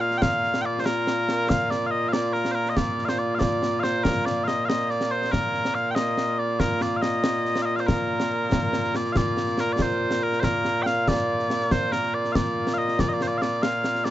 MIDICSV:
0, 0, Header, 1, 3, 480
1, 0, Start_track
1, 0, Key_signature, -2, "major"
1, 0, Tempo, 425532
1, 249, Time_signature, 6, 3, 24, 8
1, 15909, End_track
2, 0, Start_track
2, 0, Title_t, "Bagpipes"
2, 0, Program_c, 0, 109
2, 0, Note_on_c, 0, 46, 89
2, 0, Note_on_c, 0, 58, 89
2, 0, Note_on_c, 0, 65, 89
2, 9, Note_on_c, 0, 77, 111
2, 201, Note_off_c, 0, 77, 0
2, 201, Note_on_c, 0, 79, 113
2, 248, Note_off_c, 0, 79, 0
2, 248, Note_on_c, 0, 77, 113
2, 695, Note_off_c, 0, 77, 0
2, 695, Note_on_c, 0, 79, 91
2, 739, Note_off_c, 0, 79, 0
2, 739, Note_on_c, 0, 74, 91
2, 900, Note_off_c, 0, 74, 0
2, 900, Note_on_c, 0, 72, 74
2, 966, Note_off_c, 0, 72, 0
2, 966, Note_on_c, 0, 70, 93
2, 1683, Note_off_c, 0, 70, 0
2, 1683, Note_on_c, 0, 77, 108
2, 1922, Note_off_c, 0, 77, 0
2, 1922, Note_on_c, 0, 74, 87
2, 2103, Note_off_c, 0, 74, 0
2, 2103, Note_on_c, 0, 77, 98
2, 2153, Note_off_c, 0, 77, 0
2, 2153, Note_on_c, 0, 75, 98
2, 2353, Note_off_c, 0, 75, 0
2, 2353, Note_on_c, 0, 77, 93
2, 2399, Note_off_c, 0, 77, 0
2, 2399, Note_on_c, 0, 74, 93
2, 2630, Note_off_c, 0, 74, 0
2, 2630, Note_on_c, 0, 70, 80
2, 2837, Note_off_c, 0, 70, 0
2, 2837, Note_on_c, 0, 72, 87
2, 2876, Note_off_c, 0, 72, 0
2, 2876, Note_on_c, 0, 70, 87
2, 3039, Note_off_c, 0, 70, 0
2, 3039, Note_on_c, 0, 75, 78
2, 3120, Note_off_c, 0, 75, 0
2, 3120, Note_on_c, 0, 74, 93
2, 3442, Note_off_c, 0, 74, 0
2, 3442, Note_on_c, 0, 77, 82
2, 3482, Note_off_c, 0, 77, 0
2, 3482, Note_on_c, 0, 72, 82
2, 3594, Note_off_c, 0, 72, 0
2, 3594, Note_on_c, 0, 74, 86
2, 3776, Note_on_c, 0, 77, 94
2, 3777, Note_off_c, 0, 74, 0
2, 3825, Note_off_c, 0, 77, 0
2, 3825, Note_on_c, 0, 74, 94
2, 4283, Note_off_c, 0, 74, 0
2, 4283, Note_on_c, 0, 77, 95
2, 4323, Note_off_c, 0, 77, 0
2, 4323, Note_on_c, 0, 72, 95
2, 4553, Note_off_c, 0, 72, 0
2, 4553, Note_on_c, 0, 70, 98
2, 4801, Note_off_c, 0, 70, 0
2, 4801, Note_on_c, 0, 74, 93
2, 5008, Note_off_c, 0, 74, 0
2, 5008, Note_on_c, 0, 77, 94
2, 5048, Note_off_c, 0, 77, 0
2, 5048, Note_on_c, 0, 75, 94
2, 5247, Note_off_c, 0, 75, 0
2, 5247, Note_on_c, 0, 77, 92
2, 5286, Note_off_c, 0, 77, 0
2, 5286, Note_on_c, 0, 75, 92
2, 5529, Note_off_c, 0, 75, 0
2, 5529, Note_on_c, 0, 74, 91
2, 5765, Note_off_c, 0, 74, 0
2, 5765, Note_on_c, 0, 72, 96
2, 5997, Note_off_c, 0, 72, 0
2, 5997, Note_on_c, 0, 70, 95
2, 6482, Note_off_c, 0, 70, 0
2, 6482, Note_on_c, 0, 77, 96
2, 6666, Note_off_c, 0, 77, 0
2, 6666, Note_on_c, 0, 79, 93
2, 6712, Note_off_c, 0, 79, 0
2, 6712, Note_on_c, 0, 75, 93
2, 7205, Note_off_c, 0, 75, 0
2, 7205, Note_on_c, 0, 74, 89
2, 7444, Note_off_c, 0, 74, 0
2, 7444, Note_on_c, 0, 70, 90
2, 7694, Note_off_c, 0, 70, 0
2, 7694, Note_on_c, 0, 74, 93
2, 7857, Note_off_c, 0, 74, 0
2, 7857, Note_on_c, 0, 77, 72
2, 7916, Note_off_c, 0, 77, 0
2, 7916, Note_on_c, 0, 75, 86
2, 8596, Note_off_c, 0, 75, 0
2, 8596, Note_on_c, 0, 77, 91
2, 8632, Note_off_c, 0, 77, 0
2, 8632, Note_on_c, 0, 75, 91
2, 8753, Note_off_c, 0, 75, 0
2, 8753, Note_on_c, 0, 77, 64
2, 8798, Note_off_c, 0, 77, 0
2, 8798, Note_on_c, 0, 72, 64
2, 8874, Note_off_c, 0, 72, 0
2, 8874, Note_on_c, 0, 70, 76
2, 10109, Note_off_c, 0, 70, 0
2, 10109, Note_on_c, 0, 74, 88
2, 10292, Note_off_c, 0, 74, 0
2, 10292, Note_on_c, 0, 77, 97
2, 10343, Note_off_c, 0, 77, 0
2, 10343, Note_on_c, 0, 74, 97
2, 10832, Note_off_c, 0, 74, 0
2, 10832, Note_on_c, 0, 70, 98
2, 10973, Note_off_c, 0, 70, 0
2, 10973, Note_on_c, 0, 74, 74
2, 11076, Note_off_c, 0, 74, 0
2, 11076, Note_on_c, 0, 72, 86
2, 11542, Note_off_c, 0, 72, 0
2, 11542, Note_on_c, 0, 70, 93
2, 11733, Note_off_c, 0, 70, 0
2, 11733, Note_on_c, 0, 72, 97
2, 11778, Note_off_c, 0, 72, 0
2, 11778, Note_on_c, 0, 70, 97
2, 12211, Note_off_c, 0, 70, 0
2, 12211, Note_on_c, 0, 79, 104
2, 12255, Note_off_c, 0, 79, 0
2, 12255, Note_on_c, 0, 77, 104
2, 12500, Note_off_c, 0, 77, 0
2, 12500, Note_on_c, 0, 74, 91
2, 13216, Note_off_c, 0, 74, 0
2, 13216, Note_on_c, 0, 72, 112
2, 13448, Note_off_c, 0, 72, 0
2, 13448, Note_on_c, 0, 70, 96
2, 13698, Note_off_c, 0, 70, 0
2, 13698, Note_on_c, 0, 74, 97
2, 13899, Note_off_c, 0, 74, 0
2, 13899, Note_on_c, 0, 77, 99
2, 13936, Note_off_c, 0, 77, 0
2, 13936, Note_on_c, 0, 74, 99
2, 14368, Note_off_c, 0, 74, 0
2, 14368, Note_on_c, 0, 77, 99
2, 14416, Note_off_c, 0, 77, 0
2, 14416, Note_on_c, 0, 75, 99
2, 14663, Note_off_c, 0, 75, 0
2, 14663, Note_on_c, 0, 74, 107
2, 14761, Note_off_c, 0, 74, 0
2, 14761, Note_on_c, 0, 75, 69
2, 14815, Note_off_c, 0, 75, 0
2, 14815, Note_on_c, 0, 74, 94
2, 14917, Note_off_c, 0, 74, 0
2, 14917, Note_on_c, 0, 72, 71
2, 14975, Note_off_c, 0, 72, 0
2, 14975, Note_on_c, 0, 74, 93
2, 15090, Note_off_c, 0, 74, 0
2, 15090, Note_on_c, 0, 77, 92
2, 15134, Note_off_c, 0, 77, 0
2, 15134, Note_on_c, 0, 74, 92
2, 15367, Note_off_c, 0, 74, 0
2, 15367, Note_on_c, 0, 77, 96
2, 15842, Note_off_c, 0, 77, 0
2, 15842, Note_on_c, 0, 74, 98
2, 15909, Note_off_c, 0, 46, 0
2, 15909, Note_off_c, 0, 58, 0
2, 15909, Note_off_c, 0, 65, 0
2, 15909, Note_off_c, 0, 74, 0
2, 15909, End_track
3, 0, Start_track
3, 0, Title_t, "Drums"
3, 126, Note_on_c, 9, 38, 32
3, 238, Note_off_c, 9, 38, 0
3, 247, Note_on_c, 9, 35, 55
3, 247, Note_on_c, 9, 38, 102
3, 360, Note_off_c, 9, 35, 0
3, 360, Note_off_c, 9, 38, 0
3, 490, Note_on_c, 9, 38, 24
3, 603, Note_off_c, 9, 38, 0
3, 608, Note_on_c, 9, 38, 76
3, 720, Note_off_c, 9, 38, 0
3, 969, Note_on_c, 9, 38, 108
3, 1082, Note_off_c, 9, 38, 0
3, 1211, Note_on_c, 9, 38, 80
3, 1323, Note_off_c, 9, 38, 0
3, 1451, Note_on_c, 9, 38, 70
3, 1564, Note_off_c, 9, 38, 0
3, 1693, Note_on_c, 9, 35, 54
3, 1693, Note_on_c, 9, 38, 101
3, 1806, Note_off_c, 9, 35, 0
3, 1806, Note_off_c, 9, 38, 0
3, 1932, Note_on_c, 9, 38, 58
3, 2044, Note_off_c, 9, 38, 0
3, 2407, Note_on_c, 9, 38, 100
3, 2520, Note_off_c, 9, 38, 0
3, 2648, Note_on_c, 9, 38, 26
3, 2761, Note_off_c, 9, 38, 0
3, 2763, Note_on_c, 9, 38, 67
3, 2876, Note_off_c, 9, 38, 0
3, 3000, Note_on_c, 9, 38, 29
3, 3113, Note_off_c, 9, 38, 0
3, 3121, Note_on_c, 9, 35, 52
3, 3121, Note_on_c, 9, 38, 92
3, 3234, Note_off_c, 9, 35, 0
3, 3234, Note_off_c, 9, 38, 0
3, 3367, Note_on_c, 9, 38, 25
3, 3480, Note_off_c, 9, 38, 0
3, 3481, Note_on_c, 9, 38, 74
3, 3594, Note_off_c, 9, 38, 0
3, 3843, Note_on_c, 9, 35, 58
3, 3843, Note_on_c, 9, 38, 96
3, 3956, Note_off_c, 9, 35, 0
3, 3956, Note_off_c, 9, 38, 0
3, 4089, Note_on_c, 9, 38, 67
3, 4202, Note_off_c, 9, 38, 0
3, 4327, Note_on_c, 9, 38, 71
3, 4440, Note_off_c, 9, 38, 0
3, 4568, Note_on_c, 9, 35, 61
3, 4568, Note_on_c, 9, 38, 93
3, 4681, Note_off_c, 9, 35, 0
3, 4681, Note_off_c, 9, 38, 0
3, 4810, Note_on_c, 9, 38, 61
3, 4923, Note_off_c, 9, 38, 0
3, 5052, Note_on_c, 9, 38, 75
3, 5165, Note_off_c, 9, 38, 0
3, 5298, Note_on_c, 9, 38, 101
3, 5410, Note_off_c, 9, 38, 0
3, 5532, Note_on_c, 9, 38, 25
3, 5645, Note_off_c, 9, 38, 0
3, 5650, Note_on_c, 9, 38, 71
3, 5762, Note_off_c, 9, 38, 0
3, 5889, Note_on_c, 9, 38, 28
3, 6002, Note_off_c, 9, 38, 0
3, 6014, Note_on_c, 9, 35, 55
3, 6014, Note_on_c, 9, 38, 79
3, 6127, Note_off_c, 9, 35, 0
3, 6127, Note_off_c, 9, 38, 0
3, 6250, Note_on_c, 9, 38, 27
3, 6363, Note_off_c, 9, 38, 0
3, 6375, Note_on_c, 9, 38, 72
3, 6488, Note_off_c, 9, 38, 0
3, 6726, Note_on_c, 9, 38, 100
3, 6838, Note_off_c, 9, 38, 0
3, 6966, Note_on_c, 9, 38, 72
3, 7079, Note_off_c, 9, 38, 0
3, 7442, Note_on_c, 9, 35, 58
3, 7442, Note_on_c, 9, 38, 86
3, 7554, Note_off_c, 9, 35, 0
3, 7554, Note_off_c, 9, 38, 0
3, 7683, Note_on_c, 9, 38, 65
3, 7796, Note_off_c, 9, 38, 0
3, 7925, Note_on_c, 9, 38, 84
3, 8038, Note_off_c, 9, 38, 0
3, 8164, Note_on_c, 9, 38, 112
3, 8277, Note_off_c, 9, 38, 0
3, 8406, Note_on_c, 9, 38, 29
3, 8519, Note_off_c, 9, 38, 0
3, 8523, Note_on_c, 9, 38, 72
3, 8636, Note_off_c, 9, 38, 0
3, 8771, Note_on_c, 9, 38, 30
3, 8884, Note_off_c, 9, 38, 0
3, 8893, Note_on_c, 9, 35, 62
3, 8893, Note_on_c, 9, 38, 98
3, 9006, Note_off_c, 9, 35, 0
3, 9006, Note_off_c, 9, 38, 0
3, 9248, Note_on_c, 9, 38, 81
3, 9361, Note_off_c, 9, 38, 0
3, 9613, Note_on_c, 9, 35, 65
3, 9613, Note_on_c, 9, 38, 111
3, 9726, Note_off_c, 9, 35, 0
3, 9726, Note_off_c, 9, 38, 0
3, 9849, Note_on_c, 9, 38, 74
3, 9962, Note_off_c, 9, 38, 0
3, 9974, Note_on_c, 9, 38, 31
3, 10086, Note_off_c, 9, 38, 0
3, 10091, Note_on_c, 9, 38, 76
3, 10204, Note_off_c, 9, 38, 0
3, 10213, Note_on_c, 9, 38, 30
3, 10326, Note_off_c, 9, 38, 0
3, 10328, Note_on_c, 9, 35, 65
3, 10328, Note_on_c, 9, 38, 94
3, 10441, Note_off_c, 9, 35, 0
3, 10441, Note_off_c, 9, 38, 0
3, 10570, Note_on_c, 9, 38, 62
3, 10682, Note_off_c, 9, 38, 0
3, 10686, Note_on_c, 9, 38, 30
3, 10799, Note_off_c, 9, 38, 0
3, 10802, Note_on_c, 9, 38, 76
3, 10915, Note_off_c, 9, 38, 0
3, 11042, Note_on_c, 9, 35, 57
3, 11042, Note_on_c, 9, 38, 105
3, 11155, Note_off_c, 9, 35, 0
3, 11155, Note_off_c, 9, 38, 0
3, 11401, Note_on_c, 9, 38, 73
3, 11514, Note_off_c, 9, 38, 0
3, 11645, Note_on_c, 9, 38, 29
3, 11758, Note_off_c, 9, 38, 0
3, 11764, Note_on_c, 9, 35, 53
3, 11764, Note_on_c, 9, 38, 85
3, 11877, Note_off_c, 9, 35, 0
3, 11877, Note_off_c, 9, 38, 0
3, 12010, Note_on_c, 9, 38, 61
3, 12123, Note_off_c, 9, 38, 0
3, 12252, Note_on_c, 9, 38, 68
3, 12365, Note_off_c, 9, 38, 0
3, 12493, Note_on_c, 9, 35, 59
3, 12493, Note_on_c, 9, 38, 94
3, 12606, Note_off_c, 9, 35, 0
3, 12606, Note_off_c, 9, 38, 0
3, 12852, Note_on_c, 9, 38, 25
3, 12965, Note_off_c, 9, 38, 0
3, 12975, Note_on_c, 9, 38, 72
3, 13087, Note_off_c, 9, 38, 0
3, 13093, Note_on_c, 9, 38, 28
3, 13206, Note_off_c, 9, 38, 0
3, 13213, Note_on_c, 9, 35, 55
3, 13213, Note_on_c, 9, 38, 89
3, 13326, Note_off_c, 9, 35, 0
3, 13326, Note_off_c, 9, 38, 0
3, 13451, Note_on_c, 9, 38, 65
3, 13564, Note_off_c, 9, 38, 0
3, 13574, Note_on_c, 9, 38, 30
3, 13687, Note_off_c, 9, 38, 0
3, 13812, Note_on_c, 9, 38, 28
3, 13925, Note_off_c, 9, 38, 0
3, 13935, Note_on_c, 9, 35, 57
3, 13935, Note_on_c, 9, 38, 102
3, 14048, Note_off_c, 9, 35, 0
3, 14048, Note_off_c, 9, 38, 0
3, 14292, Note_on_c, 9, 38, 73
3, 14404, Note_off_c, 9, 38, 0
3, 14532, Note_on_c, 9, 38, 31
3, 14645, Note_off_c, 9, 38, 0
3, 14652, Note_on_c, 9, 35, 58
3, 14652, Note_on_c, 9, 38, 91
3, 14765, Note_off_c, 9, 35, 0
3, 14765, Note_off_c, 9, 38, 0
3, 14897, Note_on_c, 9, 38, 65
3, 15010, Note_off_c, 9, 38, 0
3, 15137, Note_on_c, 9, 38, 76
3, 15249, Note_off_c, 9, 38, 0
3, 15376, Note_on_c, 9, 38, 109
3, 15488, Note_off_c, 9, 38, 0
3, 15614, Note_on_c, 9, 38, 81
3, 15727, Note_off_c, 9, 38, 0
3, 15740, Note_on_c, 9, 38, 30
3, 15853, Note_off_c, 9, 38, 0
3, 15854, Note_on_c, 9, 38, 75
3, 15909, Note_off_c, 9, 38, 0
3, 15909, End_track
0, 0, End_of_file